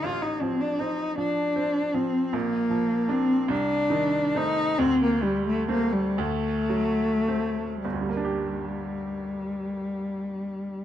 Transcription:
0.04 grand piano A1, cello F4
0.22 cello D#4
0.41 grand piano F3, cello C4
0.61 cello D4
0.79 grand piano C4, cello D#4
1.18 grand piano F3, cello D4
1.56 grand piano C4
1.94 grand piano F3, cello C4
2.33 grand piano A#1, cello A#3
2.70 grand piano F3
3.08 grand piano A#3 D4, cello C4
3.48 grand piano C2, cello D4
3.90 grand piano D#3
4.35 grand piano A3 C4, cello D#4
4.79 grand piano D2, cello C4
5.03 cello A#3
5.23 grand piano G3, cello G3
5.47 cello A3
5.69 grand piano A3 C4, cello A#3
5.93 cello G3
6.18 grand piano D2, cello A3
6.69 grand piano F#3
7.28 grand piano A3 C4
7.82 grand piano G1, cello G3
7.93 grand piano D2
8.01 grand piano G3
8.09 grand piano A#3
8.17 grand piano D4
8.25 grand piano G4

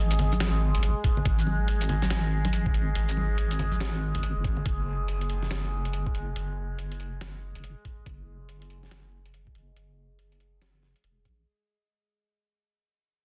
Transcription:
Already playing: wobble bass G#1, synth drone G#3 G#4
0.11 closed hi-hat, shaker
0.19 closed hi-hat, low conga
0.32 high conga, shaker
0.40 snare, closed hi-hat
0.75 wobble bass G#1, closed hi-hat
0.83 closed hi-hat
1.04 kick, closed hi-hat
1.17 low conga
1.25 wobble bass G#1, kick, closed hi-hat
1.39 shaker
1.47 high conga
1.68 closed hi-hat
1.81 closed hi-hat, shaker
1.89 closed hi-hat, low conga
2.02 snare, high conga, shaker
2.10 snare, closed hi-hat
2.45 closed hi-hat, high conga
2.53 closed hi-hat, shaker
2.66 kick, low conga
2.74 wobble bass G#1, closed hi-hat
2.95 wobble bass G#1, closed hi-hat
3.08 shaker
3.17 high conga
3.38 closed hi-hat
3.51 closed hi-hat, shaker
3.59 closed hi-hat, low conga
3.72 high conga, shaker
3.80 snare, closed hi-hat
4.15 wobble bass G#1, closed hi-hat, low conga
4.23 closed hi-hat
4.36 wobble bass F#1
4.44 wobble bass G#1, kick, closed hi-hat
4.57 low conga
4.66 wobble bass F#1, kick, closed hi-hat
5.08 closed hi-hat
5.21 closed hi-hat
5.30 closed hi-hat
5.43 snare
5.51 snare, closed hi-hat
5.85 closed hi-hat
5.93 closed hi-hat
6.07 kick
6.15 wobble bass F#1, closed hi-hat
6.36 wobble bass F#1, closed hi-hat
6.79 closed hi-hat
6.92 closed hi-hat
7.00 closed hi-hat
7.21 snare, closed hi-hat
7.55 wobble bass F#1, closed hi-hat
7.64 closed hi-hat
7.85 kick, closed hi-hat
8.06 wobble bass F#1, kick, closed hi-hat
8.49 closed hi-hat
8.62 closed hi-hat
8.70 closed hi-hat
8.83 snare
8.91 snare, closed hi-hat
9.26 closed hi-hat
9.34 closed hi-hat
9.47 kick
9.55 wobble bass F#1, closed hi-hat
9.76 wobble bass F#1, closed hi-hat
10.19 closed hi-hat
10.32 closed hi-hat
10.40 closed hi-hat
10.62 snare, closed hi-hat
10.83 snare
10.96 closed hi-hat
11.04 wobble bass E1, closed hi-hat
11.25 wobble bass A#1, kick, closed hi-hat

